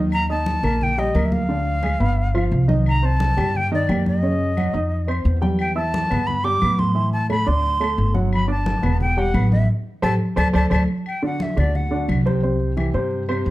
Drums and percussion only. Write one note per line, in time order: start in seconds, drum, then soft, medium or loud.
0.12 high conga soft
0.12 claves medium
0.30 high conga soft
0.46 high conga medium
0.64 high conga soft
0.64 low conga medium
0.64 claves medium
0.81 high conga soft
0.81 low conga medium
0.98 high conga soft
1.15 high conga medium
1.15 claves medium
1.32 high conga medium
1.49 high conga soft
1.66 high conga soft
1.83 high conga medium
1.83 claves medium
2.00 high conga soft
2.17 high conga soft
2.34 high conga soft
2.34 claves medium
2.52 high conga soft
2.69 high conga medium
2.86 high conga soft
2.86 claves medium
3.04 high conga soft
3.20 high conga medium
3.38 high conga soft
3.38 low conga medium
3.38 claves medium
3.55 high conga soft
3.55 low conga medium
3.72 high conga soft
3.89 high conga medium
3.89 claves medium
4.06 high conga medium
4.24 high conga soft
4.41 high conga soft
4.57 high conga medium
4.57 claves medium
4.74 high conga soft
4.92 high conga soft
5.08 high conga soft
5.08 claves medium
5.26 high conga soft
5.43 high conga medium
5.59 high conga soft
5.59 claves medium
5.78 high conga soft
5.94 high conga loud
6.11 high conga soft
6.11 low conga medium
6.11 claves medium
6.28 high conga soft
6.28 low conga medium
6.45 high conga soft
6.62 high conga medium
6.62 claves medium
6.79 high conga medium
6.96 high conga soft
7.13 high conga soft
7.30 high conga medium
7.30 claves medium
7.64 high conga soft
7.81 high conga soft
7.81 claves medium
7.98 high conga soft
8.15 high conga medium
8.32 high conga soft
8.32 claves medium
8.50 high conga soft
8.66 high conga medium
8.83 high conga soft
8.83 low conga medium
8.83 claves medium
9.00 high conga soft
9.00 low conga medium
9.17 high conga soft
9.34 high conga medium
9.34 claves medium
9.52 high conga medium
10.03 high conga medium
10.03 claves medium
10.37 high conga medium
10.37 claves loud
10.54 high conga medium
10.54 claves medium
10.71 high conga medium
10.71 claves loud
11.06 high conga soft
11.06 claves medium
11.23 high conga soft
11.40 high conga medium
11.57 high conga soft
11.57 low conga medium
11.57 claves medium
11.75 high conga soft
11.75 low conga medium
11.93 high conga soft
12.09 high conga medium
12.09 claves medium
12.27 high conga medium
12.43 high conga soft
12.60 high conga soft
12.77 high conga soft
12.77 claves medium
12.95 high conga soft
13.11 high conga soft
13.28 high conga soft
13.28 claves medium
13.46 high conga soft